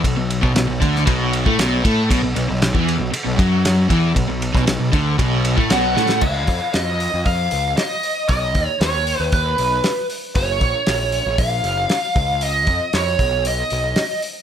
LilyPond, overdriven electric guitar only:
\new Staff \with { instrumentName = "Overdriven electric guitar" } { \clef bass \time 4/4 \key b \lydian \tempo 4 = 116 b,16 b,8 b,16 b,16 b,16 d8 b,8. a16 b,8 a8 | b,16 b,16 b,16 b,8 e8 b,16 r16 b,16 fis4 e8 | b,16 b,8 b,16 b,16 b,16 d8 b,8. a16 b,8 a8 | r1 |
r1 | r1 | r1 | }